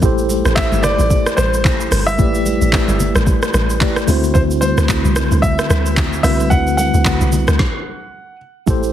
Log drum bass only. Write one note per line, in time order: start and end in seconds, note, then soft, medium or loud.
0.03 0.42 A1 loud
0.45 0.70 A1 loud
0.72 0.97 G1 medium
0.99 1.24 A1 loud
1.38 1.88 A1 medium
1.92 2.17 G1 medium
2.19 2.58 A1 loud
2.62 2.87 A1 medium
2.89 3.14 G1 medium
3.16 3.41 A1 loud
3.54 4.04 A1 medium
4.08 4.33 D2 loud
4.35 4.75 D2 loud
4.78 5.03 D2 loud
5.05 5.30 C2 loud
5.32 5.57 D2 loud
5.70 6.20 D2 loud
6.24 6.49 C2 loud
6.51 6.91 D2 loud
6.94 7.19 D2 loud
7.21 7.46 C2 loud
7.48 7.59 D2 medium
8.68 8.93 A1 loud